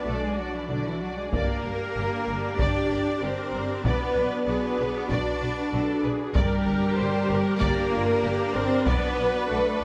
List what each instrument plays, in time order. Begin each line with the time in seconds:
Already playing: viola section D4, string section D4 F#4 D5, french horn section F#4 D5
0.05 double bass section B1, cello section A3, violin section A4 D5
0.22 cello section G#3, violin section G#4
0.38 cello section F#3, violin section F#4 D5
0.54 cello section E3, violin section E4
0.69 double bass section B1, cello section D3, violin section D4 D5
0.86 cello section E3, violin section E4
1.01 cello section F#3, violin section F#4 D5
1.18 cello section G#3, violin section G#4
1.32 double bass section G1, cello section A#3, string section D4 G4 D5, french horn section G4 D5, viola section A#4, violin section A#4 D5, taiko
1.64 double bass section G1, violin section A#4
1.96 double bass section G1, violin section G4
2.28 double bass section G1, violin section A#4
2.59 double bass section G1, cello section D4, viola section G4, violin section D5, taiko
2.90 double bass section G1, violin section A#4
3.22 double bass section G1, cello section C4, violin section G4 C5, viola section A#4
3.53 double bass section G1, violin section A#4
3.83 double bass section B1, cello section B3, french horn section F#4, string section F#4 B4, viola section B4, violin section B4 D5, taiko
4.16 double bass section B1, violin section B4
4.47 double bass section B1, cello section B3, violin section F#4 B4, viola section G#4
4.79 double bass section B1, violin section B4
5.10 double bass section B1, cello section D4, viola section F#4, violin section D5, taiko
5.41 double bass section B1, violin section B4
5.72 double bass section B1, violin section F#4, viola section A4
6.04 double bass section B1, viola section G#4, violin section B4
6.34 double bass section G1, cello section G3, string section D4 G4 A#4 D5, violin section G4 D5, french horn section A#4 D5, viola section A#4, taiko
6.66 double bass section G1, violin section A#4
6.98 double bass section G1, violin section G4, viola section C5
7.29 double bass section G1, violin section A#4, viola section A#4
7.60 double bass section G1, cello section A#3, viola section G4, violin section A#4 D5, taiko
7.92 double bass section G1, viola section F4, violin section A#4
8.23 double bass section G1, viola section G4, violin section G4
8.54 double bass section G1, cello section C4, violin section A#4 C5, viola section A#4
8.86 double bass section B1, cello section B3, french horn section F#4, string section F#4 B4, violin section B4 D5, viola section B4, taiko
9.18 double bass section B1, violin section B4
9.50 double bass section B1, cello section A3, violin section F#4 A4